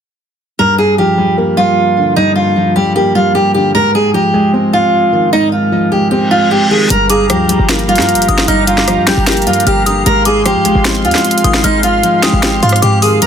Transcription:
0.59 grand piano G2, steel-string acoustic guitar A#4
0.78 steel-string acoustic guitar G#4
0.98 grand piano F3, steel-string acoustic guitar G4
1.18 grand piano G3
1.38 grand piano A#3
1.57 grand piano G3, steel-string acoustic guitar F4
1.97 grand piano D3
2.16 grand piano G2, steel-string acoustic guitar D#4
2.36 steel-string acoustic guitar F4
2.56 grand piano F3
2.76 grand piano G3, steel-string acoustic guitar G4
2.96 grand piano A#3, steel-string acoustic guitar G4
3.15 grand piano G3, steel-string acoustic guitar F4
3.35 steel-string acoustic guitar G4
3.54 grand piano D3, steel-string acoustic guitar G4
3.74 grand piano G#2, steel-string acoustic guitar A#4
3.95 steel-string acoustic guitar G#4
4.14 grand piano F3, steel-string acoustic guitar G4
4.34 grand piano G#3
4.53 grand piano C4
4.73 grand piano G#3, steel-string acoustic guitar F4
5.12 grand piano D#3
5.33 grand piano G#2, steel-string acoustic guitar D#4
5.52 steel-string acoustic guitar F4
5.72 grand piano F3
5.92 grand piano G#3, steel-string acoustic guitar G4
6.11 grand piano C4, steel-string acoustic guitar G4, reverse cymbal
6.31 grand piano G#3, steel-string acoustic guitar F4
6.51 steel-string acoustic guitar G4
6.70 grand piano D#3, steel-string acoustic guitar G#4
6.90 808-style bass G1, grand piano G2, analog synth pad G4 F5 A#5, steel-string acoustic guitar A#4, closed hi-hat
7.10 steel-string acoustic guitar G#4, synth bell D6, closed hi-hat
7.30 808-style bass D2, grand piano F3, steel-string acoustic guitar G4, cross-stick, closed hi-hat
7.49 grand piano G3, closed hi-hat
7.59 808-style bass G1
7.69 grand piano A#3, snare, closed hi-hat
7.79 closed hi-hat
7.89 grand piano G3, steel-string acoustic guitar F4, closed hi-hat
7.96 808-style bass G2, snare, closed hi-hat
8.02 closed hi-hat
8.09 closed hi-hat
8.14 808-style bass G1, closed hi-hat
8.22 closed hi-hat
8.28 808-style bass G1, grand piano D3, synth bell D#6, closed hi-hat
8.38 snare
8.48 808-style bass G1, grand piano G2, steel-string acoustic guitar D#4, synth bell F6, closed hi-hat
8.67 steel-string acoustic guitar F4, closed hi-hat
8.78 snare
8.88 grand piano F3, cross-stick, closed hi-hat
8.97 808-style bass G2
9.07 808-style bass G1, grand piano G3, steel-string acoustic guitar G4, synth bell G6, snare, closed hi-hat
9.17 808-style bass G1
9.27 grand piano A#3, steel-string acoustic guitar G4, snare, closed hi-hat
9.32 closed hi-hat
9.37 closed hi-hat
9.42 closed hi-hat
9.47 808-style bass G2, grand piano G3, steel-string acoustic guitar F4, closed hi-hat
9.53 closed hi-hat
9.60 closed hi-hat
9.66 808-style bass G1, steel-string acoustic guitar G4, synth bell F6, closed hi-hat
9.86 grand piano D3, steel-string acoustic guitar G4, synth bell D#6, closed hi-hat
10.06 808-style bass G#1, grand piano G#2, analog synth pad G#3 C6, steel-string acoustic guitar A#4, closed hi-hat
10.25 steel-string acoustic guitar G#4, synth bell D6, closed hi-hat
10.45 grand piano F3, steel-string acoustic guitar G4, cross-stick, closed hi-hat
10.55 808-style bass G#2
10.65 808-style bass G#1, grand piano G#3, closed hi-hat
10.75 808-style bass G#1
10.85 grand piano C4, snare, closed hi-hat
10.95 closed hi-hat
11.05 808-style bass D#2, grand piano G#3, steel-string acoustic guitar F4, closed hi-hat
11.11 snare, closed hi-hat
11.18 closed hi-hat
11.24 closed hi-hat
11.31 closed hi-hat
11.38 closed hi-hat
11.44 808-style bass G#1, grand piano D#3, synth bell D#6, closed hi-hat
11.54 snare
11.64 808-style bass G#1, grand piano G#2, steel-string acoustic guitar D#4, synth bell F6, closed hi-hat
11.83 steel-string acoustic guitar F4, closed hi-hat
12.03 grand piano F3, closed hi-hat
12.23 grand piano G#3, steel-string acoustic guitar G4, synth bell D#6, snare, closed hi-hat
12.33 808-style bass G#1
12.42 grand piano C4, steel-string acoustic guitar G4, snare, closed hi-hat
12.63 808-style bass G#2, grand piano G#3, steel-string acoustic guitar F4, synth bell C6, closed hi-hat
12.69 cross-stick, closed hi-hat
12.76 closed hi-hat
12.82 808-style bass G#2, steel-string acoustic guitar G4, synth bell D6, closed hi-hat
13.02 grand piano D#3, steel-string acoustic guitar G#4, synth bell D#6, open hi-hat
13.22 grand piano G2, analog synth pad G4 A#5, steel-string acoustic guitar A#4, closed hi-hat

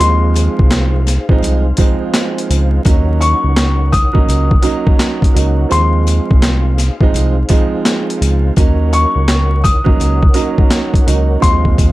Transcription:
Already playing: grand piano F3, tonewheel organ D#4
0.00 analog synth bass D#2, grand piano G#3 C4 D#4, tonewheel organ G#4 C5 F5, upright piano C6, closed hi-hat
0.35 closed hi-hat, sleigh bells
0.59 analog synth bass C2, kick
0.71 snare, clap, closed hi-hat, sleigh bells
1.07 snare, closed hi-hat, sleigh bells
1.29 analog synth bass A#1, grand piano F3 G#3 C4 D#4, kick
1.43 analog synth bass C2, closed hi-hat, sleigh bells
1.77 grand piano F3 G#3 C4 D#4, kick, closed hi-hat, sleigh bells
2.14 snare, clap, closed hi-hat, sleigh bells
2.38 closed hi-hat
2.50 analog synth bass C#2, closed hi-hat, sleigh bells
2.85 analog synth bass D#2, grand piano F#3 A#3 C#4 D#4, tonewheel organ D#4 A#4 C#5 F#5, kick, closed hi-hat, sleigh bells
3.21 upright piano C#6, closed hi-hat, sleigh bells
3.44 analog synth bass C#2
3.57 snare, clap, closed hi-hat, sleigh bells
3.92 upright piano D#6, kick, closed hi-hat, sleigh bells
4.13 analog synth bass A#1, grand piano F#3 A#3 C#4 D#4, kick
4.28 analog synth bass C#2, closed hi-hat, sleigh bells
4.51 kick
4.62 grand piano F#3 A#3 C#4 D#4, closed hi-hat, sleigh bells
4.87 kick
5.00 snare, clap, closed hi-hat, sleigh bells
5.22 kick, closed hi-hat
5.33 analog synth bass C#2, grand piano F#3 A#3 C#4 D#4, closed hi-hat, sleigh bells
5.69 analog synth bass D#2, grand piano F3 G#3 C4 D#4, tonewheel organ G#4 C5 F5, upright piano C6, closed hi-hat, sleigh bells
6.07 closed hi-hat, sleigh bells
6.31 analog synth bass C2, kick
6.43 snare, clap, closed hi-hat, sleigh bells
6.78 snare, closed hi-hat, sleigh bells
7.01 analog synth bass A#1, grand piano F3 G#3 C4 D#4, kick
7.14 analog synth bass C2, closed hi-hat, sleigh bells
7.49 grand piano F3 G#3 C4 D#4, kick, closed hi-hat, sleigh bells
7.85 snare, clap, closed hi-hat, sleigh bells
8.10 closed hi-hat
8.21 analog synth bass C#2, closed hi-hat, sleigh bells
8.56 analog synth bass D#2, grand piano F#3 A#3 C#4 D#4, tonewheel organ A#4 C#5 F#5, kick, closed hi-hat, sleigh bells
8.93 upright piano C#6, closed hi-hat, sleigh bells
9.15 analog synth bass C#2
9.28 snare, clap, closed hi-hat, sleigh bells
9.64 upright piano D#6, kick, closed hi-hat, sleigh bells
9.84 analog synth bass A#1, grand piano F#3 A#3 C#4 D#4, kick
10.00 analog synth bass C#2, closed hi-hat, sleigh bells
10.23 kick
10.34 grand piano F#3 A#3 C#4 D#4, closed hi-hat, sleigh bells
10.58 kick
10.71 snare, clap, closed hi-hat, sleigh bells
10.94 kick, closed hi-hat
11.05 analog synth bass C#2, grand piano F#3 A#3 C#4 D#4, closed hi-hat, sleigh bells
11.40 analog synth bass D#2, grand piano F3 G#3 C4 D#4, tonewheel organ G#4 C5 F5, upright piano C6, kick, closed hi-hat, sleigh bells
11.65 kick
11.78 kick, closed hi-hat, sleigh bells

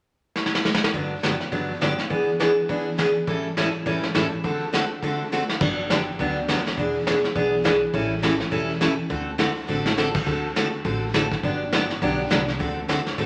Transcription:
0.36 snare
0.46 snare
0.55 snare
0.65 snare
0.74 snare
0.84 snare
0.94 steel-string acoustic guitar G2 D3 F#3 B3 D4 G4, brush sweep, kick
1.23 steel-string acoustic guitar G2 D3 F#3 B3 D4 G4, snare, hi-hat pedal
1.40 snare
1.52 steel-string acoustic guitar G2 D3 F#3 B3 D4 G4, brush sweep, kick
1.81 steel-string acoustic guitar G2 D3 F#3 B3 D4 G4, snare, hi-hat pedal
1.98 snare
2.10 steel-string acoustic guitar E3 B3 D4 G#4, brush sweep, kick
2.40 steel-string acoustic guitar E3 B3 D4 G#4, snare, hi-hat pedal
2.69 steel-string acoustic guitar E3 B3 D4 G#4, brush sweep, kick
2.98 steel-string acoustic guitar E3 B3 D4 G#4, snare, hi-hat pedal
3.27 steel-string acoustic guitar A2 E3 G3 C#4 E4 A4, brush sweep, kick
3.57 steel-string acoustic guitar A2 E3 G3 C#4 E4 A4, snare, hi-hat pedal
3.86 steel-string acoustic guitar A2 E3 G3 C#4 E4 A4, brush sweep, kick
4.03 snare
4.15 steel-string acoustic guitar A2 E3 G3 C#4 E4 A4, snare, hi-hat pedal
4.44 steel-string acoustic guitar D3 A3 C4 F#4 A4, brush sweep, kick
4.73 steel-string acoustic guitar D3 A3 C4 F#4 A4, snare, hi-hat pedal
5.02 steel-string acoustic guitar D3 A3 C4 F#4 A4, brush sweep, kick
5.32 steel-string acoustic guitar D3 A3 C4 F#4 A4, hi-hat pedal
5.49 snare
5.61 upright bass G1, steel-string acoustic guitar D3 F#3 B3 D4 G4, brush sweep, kick, crash
5.90 steel-string acoustic guitar D3 F#3 B3 D4 G4, snare, hi-hat pedal
6.19 upright bass D2, steel-string acoustic guitar D3 F#3 B3 D4 G4, brush sweep, kick
6.48 steel-string acoustic guitar D3 F#3 B3 D4 G4, snare, hi-hat pedal
6.58 snare
6.66 snare
6.68 snare
6.77 upright bass E1, steel-string acoustic guitar E3 B3 D4 G#4, brush sweep, kick
7.07 steel-string acoustic guitar E3 B3 D4 G#4, snare, hi-hat pedal
7.24 snare
7.35 upright bass B1, steel-string acoustic guitar E3 B3 D4 G#4, brush sweep, kick
7.64 steel-string acoustic guitar E3 B3 D4 G#4, snare, hi-hat pedal
7.93 upright bass A1, steel-string acoustic guitar E3 G3 C#4 E4 A4, brush sweep, kick
8.22 steel-string acoustic guitar E3 G3 C#4 E4 A4, snare, hi-hat pedal
8.40 snare
8.51 upright bass E1, steel-string acoustic guitar E3 G3 C#4 E4 A4, brush sweep, kick
8.81 steel-string acoustic guitar E3 G3 C#4 E4 A4, snare, hi-hat pedal
9.10 upright bass D2, steel-string acoustic guitar D3 A3 C4 F#4 A4, brush sweep, kick
9.38 steel-string acoustic guitar D3 A3 C4 F#4 A4, snare, hi-hat pedal
9.68 upright bass A1, steel-string acoustic guitar D3 A3 C4 F#4 A4
9.86 snare
9.97 steel-string acoustic guitar D3 A3 C4 F#4 A4, snare, hi-hat pedal
10.15 kick, crash
10.26 upright bass D2, steel-string acoustic guitar D3 A3 C4 F#4 A4, brush sweep, kick
10.56 steel-string acoustic guitar D3 A3 C4 F#4 A4, snare, hi-hat pedal
10.84 upright bass A1, steel-string acoustic guitar D3 A3 C4 F#4 A4, brush sweep, kick
11.14 steel-string acoustic guitar D3 A3 C4 F#4 A4, snare, hi-hat pedal
11.32 kick, snare
11.43 upright bass G1, steel-string acoustic guitar D3 F#3 B3 D4 G4, brush sweep, kick
11.72 steel-string acoustic guitar D3 F#3 B3 D4 G4, snare, hi-hat pedal
11.90 snare
12.02 upright bass B1, steel-string acoustic guitar D3 F#3 B3 D4 G4, brush sweep, kick
12.30 upright bass C2, steel-string acoustic guitar D3 F#3 B3 D4 G4, snare, hi-hat pedal
12.48 snare
12.59 upright bass D2, steel-string acoustic guitar D3 A3 C4 F#4 A4, brush sweep, kick
12.88 steel-string acoustic guitar D3 A3 C4 F#4 A4, snare, hi-hat pedal
13.07 snare
13.18 upright bass A1, steel-string acoustic guitar D3 A3 C4 F#4 A4, brush sweep, kick

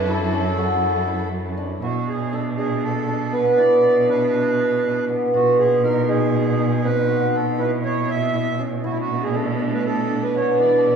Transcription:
Already playing: cello F#2, string section F#3 E4 A4, hammered dulcimer D4 F#4
0.07 hammered dulcimer E4, accordion A4
0.32 hammered dulcimer C#4
0.58 hammered dulcimer F#4
1.08 hammered dulcimer E4
1.57 hammered dulcimer D4
1.82 cello B2, hammered dulcimer E4, accordion F#4
2.08 accordion G#4
2.33 hammered dulcimer D4, accordion A4
2.57 hammered dulcimer D4, accordion G#4
2.84 accordion A4
3.08 hammered dulcimer D4
3.33 hammered dulcimer B3, accordion B4
3.57 cello B2, hammered dulcimer E4, accordion D5
4.08 hammered dulcimer D4, accordion B4
4.34 hammered dulcimer D4
4.83 hammered dulcimer D4
5.09 hammered dulcimer B3
5.34 cello B2, hammered dulcimer F4, accordion F#4
5.59 accordion G#4
5.84 hammered dulcimer D#4, accordion A#4
6.09 hammered dulcimer D#4, accordion G#4
6.58 hammered dulcimer D#4
6.84 hammered dulcimer C4, accordion B4
7.09 cello B2, hammered dulcimer F#4
7.35 accordion A4
7.58 hammered dulcimer E4, accordion B4
7.84 hammered dulcimer E4, accordion C#5
8.09 accordion E5
8.34 hammered dulcimer E4
8.59 hammered dulcimer C#4
8.84 cello B2, string section A3 B3 D4, hammered dulcimer E4, accordion F#4
8.90 accordion E4
9.00 accordion F#4
9.23 accordion G#4
9.35 hammered dulcimer D4, accordion A4
9.59 hammered dulcimer D4
9.73 accordion B4
9.85 accordion A4
10.09 hammered dulcimer D4
10.23 accordion B4
10.35 hammered dulcimer B3, accordion C#5
10.60 cello B2, string section E3 G#3, hammered dulcimer E4, accordion D5

